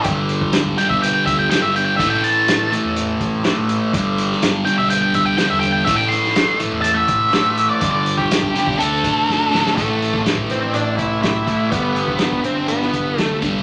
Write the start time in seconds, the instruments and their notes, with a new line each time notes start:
0.04 fingered electric bass G1, distorted electric guitar G2 D3 G3, kick, closed hi-hat
0.29 closed hi-hat
0.41 kick
0.53 fingered electric bass G1, snare, closed hi-hat
0.66 kick
0.77 distorted electric guitar G2 D3 G3, lead electric guitar G5, snare, closed hi-hat
0.90 fingered electric bass B1, lead electric guitar E5, kick
1.02 lead electric guitar G5, closed hi-hat
1.14 lead electric guitar G5
1.26 fingered electric bass D2, lead electric guitar E5, kick, closed hi-hat
1.39 lead electric guitar G5
1.50 distorted electric guitar G2 D3 G3, lead electric guitar G5, snare, closed hi-hat
1.62 fingered electric bass G1, lead electric guitar E5
1.76 lead electric guitar G5, closed hi-hat
1.85 lead electric guitar G5
1.97 fingered electric bass A1, distorted electric guitar A2 E3 A3, lead electric guitar E5, kick, closed hi-hat
2.10 lead electric guitar G5
2.24 lead electric guitar A5, closed hi-hat
2.47 fingered electric bass A1, snare, closed hi-hat
2.71 distorted electric guitar A2 E3 A3, closed hi-hat
2.84 fingered electric bass E2
2.96 closed hi-hat
3.20 fingered electric bass A1, kick, closed hi-hat
3.44 distorted electric guitar A2 E3 A3, snare, closed hi-hat
3.58 fingered electric bass A1
3.69 closed hi-hat
3.92 fingered electric bass G1, distorted electric guitar G2 D3 G3, kick, closed hi-hat
4.18 closed hi-hat
4.31 snare
4.42 fingered electric bass G1, snare, closed hi-hat
4.64 distorted electric guitar G2 D3 G3, lead electric guitar G5, closed hi-hat
4.78 fingered electric bass B1, lead electric guitar E5
4.90 lead electric guitar G5, closed hi-hat
5.02 lead electric guitar G5
5.14 fingered electric bass D2, lead electric guitar E5, kick, closed hi-hat
5.25 lead electric guitar G5
5.37 distorted electric guitar G2 D3 G3, lead electric guitar G5, snare, closed hi-hat
5.50 fingered electric bass E2, lead electric guitar E5
5.59 lead electric guitar G5, closed hi-hat
5.72 lead electric guitar G5
5.84 fingered electric bass A1, distorted electric guitar A2 E3 A3, lead electric guitar E5, kick, closed hi-hat
5.96 lead electric guitar G5
6.09 lead electric guitar C6, closed hi-hat
6.25 snare
6.36 fingered electric bass A1, snare, closed hi-hat
6.59 distorted electric guitar A2 E3 A3, closed hi-hat
6.72 fingered electric bass E2
6.82 lead electric guitar A5, closed hi-hat
6.94 lead electric guitar E5
7.08 fingered electric bass A1, kick, closed hi-hat
7.31 distorted electric guitar A2 E3 A3, snare, closed hi-hat
7.45 fingered electric bass A1
7.57 closed hi-hat
7.69 lead electric guitar D5
7.80 fingered electric bass G1, distorted electric guitar G2 D3 G3, kick, closed hi-hat
7.91 lead electric guitar D5
8.06 closed hi-hat
8.17 lead electric guitar G4, kick
8.31 fingered electric bass G1, snare, closed hi-hat
8.43 kick
8.54 distorted electric guitar G2 D3 G3, snare, closed hi-hat
8.67 fingered electric bass B1, kick
8.78 fingered electric bass D2, distorted electric guitar D3 A3 D4, lead electric guitar A4, closed hi-hat
9.04 fingered electric bass A1, kick, closed hi-hat
9.28 fingered electric bass G1, snare
9.51 fingered electric bass A1, distorted electric guitar D3 A3 D4, snare
9.67 snare
9.75 fingered electric bass A1, distorted electric guitar A2 E3 A3, lead electric guitar A3, kick, closed hi-hat
10.02 closed hi-hat
10.14 kick
10.26 snare, closed hi-hat
10.38 kick
10.49 fingered electric bass A1, lead electric guitar C4, snare, closed hi-hat
10.74 fingered electric bass A1, lead electric guitar D4, closed hi-hat
10.98 fingered electric bass C2, lead electric guitar E4, kick, closed hi-hat
11.23 lead electric guitar E4, snare, closed hi-hat
11.47 fingered electric bass A1, distorted electric guitar A2 E3 A3, kick, closed hi-hat
11.70 fingered electric bass G1, distorted electric guitar G2 D3 G3, lead electric guitar B3, kick, closed hi-hat
11.96 closed hi-hat
12.08 kick
12.18 lead electric guitar B3, snare, closed hi-hat
12.32 kick
12.44 fingered electric bass G1, lead electric guitar C4, closed hi-hat
12.68 fingered electric bass G1, lead electric guitar B3, closed hi-hat
12.81 snare
12.93 fingered electric bass B1, kick, closed hi-hat
13.18 lead electric guitar A3, snare, closed hi-hat
13.41 fingered electric bass C2, distorted electric guitar G2 D3 G3, kick, closed hi-hat